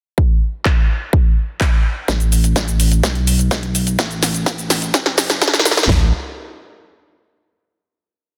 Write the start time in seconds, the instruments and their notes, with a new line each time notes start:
0.18 kick
0.65 kick, clap
1.13 kick
1.61 kick, clap
2.08 sub bass A1, kick, snare, closed hi-hat, shaker
2.20 closed hi-hat, shaker
2.32 open hi-hat, shaker
2.44 closed hi-hat, shaker
2.56 kick, snare, closed hi-hat, shaker
2.68 closed hi-hat, shaker
2.80 open hi-hat, shaker
2.92 closed hi-hat, shaker
3.03 sub bass B1, kick, snare, closed hi-hat, shaker
3.15 closed hi-hat
3.27 open hi-hat, shaker
3.39 closed hi-hat, shaker
3.51 kick, snare, closed hi-hat, shaker
3.63 closed hi-hat
3.75 open hi-hat, shaker
3.87 closed hi-hat, shaker
3.99 sub bass A1, kick, snare, closed hi-hat, shaker
4.11 closed hi-hat, shaker
4.23 snare, open hi-hat, shaker
4.34 closed hi-hat, shaker
4.46 kick, snare, closed hi-hat, shaker
4.58 closed hi-hat, shaker
4.70 snare, open hi-hat, shaker
4.82 closed hi-hat, shaker
4.94 sub bass F#1, kick, snare, closed hi-hat, shaker
5.06 snare, closed hi-hat
5.18 snare, open hi-hat, shaker
5.30 snare, closed hi-hat, shaker
5.42 kick, snare, closed hi-hat, shaker
5.48 snare
5.54 snare, closed hi-hat, shaker
5.59 snare
5.65 snare, open hi-hat, shaker
5.71 snare
5.77 snare, closed hi-hat, shaker
5.83 snare
5.89 sub bass A1, snare, floor tom